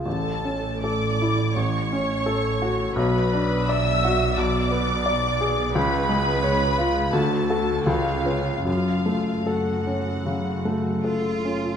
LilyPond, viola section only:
\new Staff \with { instrumentName = "Viola section" } { \time 4/4 \key fis \minor \tempo 4 = 83 a'4 d''4 cis''2 | b'4 e''4 d''2 | b'2 a'4 eis'4 | eis'4 fis'2 r4 | }